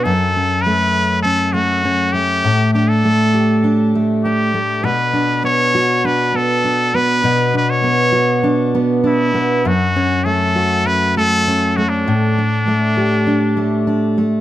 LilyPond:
<<
  \new Staff \with { instrumentName = "Muted trumpet" } { \time 4/4 \key b \minor \tempo 4 = 100 a'4 b'4 a'8 fis'4 g'8~ | g'8 g'16 a'4.~ a'16 r8 g'4 | b'4 cis''4 b'8 a'4 b'8~ | b'8 b'16 cis''4.~ cis''16 r8 e'4 |
fis'4 a'4 b'8 a'4 fis'16 d'16~ | d'2.~ d'8 r8 | }
  \new Staff \with { instrumentName = "Steel-string acoustic guitar" } { \time 4/4 \key b \minor fis,8 cis'8 a4 cis'8 a8 cis'8 a8 | a,8 d'8 a8 g'8 d'8 a8 d'8 a8 | b,8 d'8 b8 fis'8 d'8 b8 d'8 b8 | b,8 d'8 b8 fis'8 d'8 b8 d'8 b8 |
fis,8 cis'8 a8 fis'8 cis'8 a8 cis'8 a8 | a,8 d'8 a8 g'8 d'8 a8 d'8 a8 | }
>>